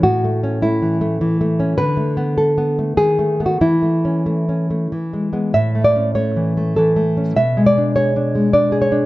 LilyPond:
\new Staff \with { instrumentName = "Nylon-string guitar" } { \time 3/4 \key a \major \tempo 4 = 100 << { fis'4 e'4 r4 | b'2 gis'8. fis'16 | e'2~ e'8 r8 | e''8 d''8 cis''4 a'4 |
e''8 d''8 cis''4 d''8 cis''8 | } \\ { \tuplet 3/2 { a,8 a8 cis'8 a8 e8 a8 e8 a8 cis'8 } | \tuplet 3/2 { d8 a8 b8 a'8 b8 a8 dis8 a8 <a b>8 } | \tuplet 3/2 { e8 a8 cis'8 a8 cis'8 a8 e8 gis8 <gis b>8 } | \tuplet 3/2 { a,8 a8 cis'8 a8 e8 a8 e8 a8 cis'8 } |
\tuplet 3/2 { b,8 gis8 d'8 gis'8 d'8 gis8 d'8 gis'8 d'8 } | } >> }